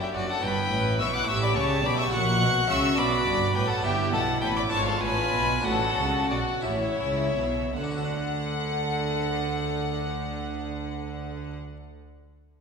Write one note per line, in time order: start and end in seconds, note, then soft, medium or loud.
0.00 0.12 F#2 medium
0.00 0.36 A3 medium
0.00 0.14 D4 medium
0.00 0.37 D4 medium
0.00 0.38 F#4 medium
0.00 0.15 G4 medium
0.00 0.14 E5 medium
0.00 0.06 G5 medium
0.13 0.22 F#1 medium
0.13 0.40 F#2 medium
0.13 0.23 F#2 medium
0.13 0.28 F#4 medium
0.13 0.29 F#4 medium
0.13 0.31 D5 loud
0.13 0.28 F#5 loud
0.27 0.42 D4 medium
0.27 0.43 A4 medium
0.27 0.44 F#5 loud
0.27 0.43 A5 loud
0.39 0.68 B3 medium
0.39 1.23 E4 medium
0.43 0.69 G1 medium
0.43 0.68 G2 medium
0.43 0.69 G2 medium
0.43 0.99 B4 loud
0.43 0.99 G5 loud
0.43 1.00 B5 loud
0.71 0.99 A1 medium
0.71 0.96 A2 medium
0.71 0.99 A2 medium
0.99 1.27 B1 medium
0.99 1.24 B2 medium
0.99 1.28 B2 medium
0.99 1.15 E5 loud
0.99 1.15 C#6 medium
0.99 1.05 E6 loud
1.13 1.29 F#5 medium
1.13 1.29 D6 loud
1.13 1.28 F#6 loud
1.23 1.55 A1 medium
1.23 2.08 A3 medium
1.23 2.08 E4 medium
1.23 2.12 G4 medium
1.27 1.53 A2 medium
1.27 1.55 A2 medium
1.27 1.42 E5 loud
1.27 1.42 C#6 loud
1.27 1.41 E6 loud
1.43 1.57 D5 loud
1.43 1.56 B5 medium
1.43 1.56 D6 loud
1.54 1.83 C#2 medium
1.54 1.81 C#3 medium
1.54 1.84 C#3 medium
1.54 1.84 C#5 loud
1.54 1.88 A5 loud
1.54 1.64 C#6 loud
1.83 2.12 B1 medium
1.83 2.10 B2 medium
1.83 2.13 B2 medium
1.83 1.98 D5 loud
1.83 1.99 B5 loud
1.83 1.98 D6 loud
1.98 2.12 E5 loud
1.98 2.13 C#6 loud
1.98 2.13 E6 loud
2.08 2.40 A#1 loud
2.08 2.93 C#4 medium
2.08 2.94 E4 medium
2.08 2.94 F#4 medium
2.08 3.83 F#4 medium
2.08 2.68 F#5 loud
2.13 2.40 A#2 loud
2.13 2.38 A#2 medium
2.13 2.69 C#6 loud
2.13 2.68 F#6 loud
2.40 2.69 B1 medium
2.40 2.66 B2 medium
2.40 2.69 B2 medium
2.68 2.96 C#2 medium
2.68 2.94 C#3 medium
2.68 2.97 C#3 medium
2.68 2.98 E5 loud
2.68 2.99 C#6 loud
2.68 2.97 E6 loud
2.93 3.25 B1 medium
2.93 3.78 B3 medium
2.93 3.79 D4 medium
2.93 3.80 F#4 medium
2.97 3.25 B2 medium
2.97 3.23 B2 medium
2.97 3.54 D5 loud
2.97 3.56 B5 loud
2.97 3.54 D6 loud
3.26 3.54 G1 loud
3.26 3.52 G2 medium
3.26 3.54 G2 medium
3.55 3.63 A1 medium
3.55 3.63 A2 medium
3.55 3.81 A2 medium
3.55 3.69 B4 loud
3.55 3.71 G5 loud
3.55 3.69 B5 loud
3.69 3.83 A4 loud
3.69 3.86 F#5 medium
3.69 3.84 A5 loud
3.79 4.66 B3 medium
3.79 4.68 D4 medium
3.79 4.68 E4 medium
3.79 4.70 E4 medium
3.83 4.12 G1 loud
3.83 4.10 G2 medium
3.83 4.12 G2 loud
3.83 4.12 G4 loud
3.83 4.12 E5 loud
3.83 3.91 G5 loud
4.12 4.42 B1 medium
4.12 4.39 B2 medium
4.12 4.42 B2 medium
4.12 4.21 A4 loud
4.12 4.41 F#5 loud
4.12 4.41 A5 loud
4.41 4.72 A1 medium
4.41 4.72 A2 medium
4.41 4.69 A2 medium
4.41 4.57 B4 loud
4.41 4.47 G5 medium
4.41 4.56 B5 loud
4.56 4.63 D5 loud
4.56 4.62 B5 loud
4.56 4.72 D6 loud
4.68 5.60 B3 medium
4.68 5.59 D4 medium
4.68 5.61 F4 medium
4.68 4.84 A5 loud
4.68 4.86 C#6 loud
4.72 5.02 G#1 medium
4.72 5.02 G#2 medium
4.72 4.99 G#2 medium
4.72 5.65 F4 medium
4.72 4.87 C#5 loud
4.85 5.02 A4 loud
4.85 5.02 F5 loud
4.85 5.02 A5 loud
5.00 5.33 A1 medium
5.00 5.33 A2 medium
5.00 5.30 A2 medium
5.00 5.63 B4 loud
5.00 5.66 G#5 loud
5.00 5.63 B5 loud
5.33 5.65 B1 medium
5.33 5.64 B2 loud
5.33 5.62 B2 medium
5.60 6.60 D4 medium
5.60 6.60 F#4 medium
5.60 6.65 F#4 medium
5.65 5.97 A1 loud
5.65 5.94 A2 medium
5.65 5.97 A2 loud
5.65 6.30 A4 loud
5.65 6.30 F#5 loud
5.65 6.29 A5 loud
5.97 6.30 C#2 medium
5.97 6.27 C#3 medium
5.97 6.30 C#3 medium
6.30 6.39 B1 medium
6.30 6.61 B2 medium
6.30 6.39 B2 medium
6.30 6.65 F#4 medium
6.30 6.39 D5 loud
6.30 6.65 F#5 loud
6.61 7.70 C#4 medium
6.61 7.71 E4 medium
6.61 7.48 E4 medium
6.61 7.72 G4 medium
6.65 7.00 A1 medium
6.65 7.00 A2 medium
6.65 6.97 A2 medium
6.65 7.76 E4 loud
6.65 7.74 C#5 loud
6.65 7.76 E5 loud
7.01 7.37 C#2 medium
7.01 7.34 C#3 medium
7.01 7.37 C#3 medium
7.37 7.75 B1 medium
7.37 7.75 B2 medium
7.37 7.72 B2 medium
7.75 11.55 D2 medium
7.75 11.55 D3 medium
7.75 11.56 D3 medium
7.75 11.54 A4 medium
7.75 11.55 F#5 loud
7.75 11.55 F#5 medium
7.84 11.63 D4 medium
7.91 11.70 F#4 medium
7.98 11.77 A4 medium
8.05 11.84 F#5 medium